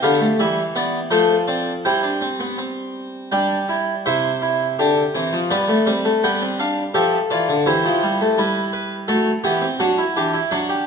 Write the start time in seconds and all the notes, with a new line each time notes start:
0.02 D3 B3 G4 F5
0.20 A3
0.39 E3 G3 E5
0.75 B3 D5
1.11 F3 A3 A4 C5
1.48 C4 D5
1.85 G3 E4 C5 G5
2.03 D4
2.21 C4
2.40 B3
2.58 C4
3.32 G3 D4 D5 G5
3.69 E4
4.06 C3 E4 C5 E5
4.42 E4
4.79 D3 D4 G4
5.15 E3 C4
5.33 F3
5.50 G3 B3 B4 D5
5.69 A3
5.86 G3 C4
6.05 A3
6.24 G3 B3 B4 G5
6.42 C4
6.59 D4 F5
6.94 F3 G4 A4 E5
7.30 E3 F4 D5
7.49 D3
7.66 E3 E4 G4 C5
7.85 F3
8.03 G3
8.21 A3
8.38 G3 E4 B4
8.73 B4
9.08 F#3 A3 A4
9.44 E3 B3 G4
9.62 C4
9.80 F#3 D4 F#4
9.98 E4
10.16 E3 D4 G4
10.33 E4
10.51 F#3 D4 F#4
10.69 G4